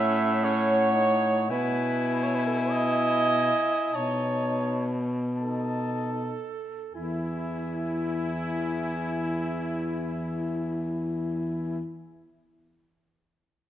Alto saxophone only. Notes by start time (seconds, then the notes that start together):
Already playing: E5
0.44 C#5
1.51 B4
2.23 C#5
2.35 B4
2.47 A4
2.59 B4
2.70 D#5
3.95 C#5
5.38 A4
6.95 E4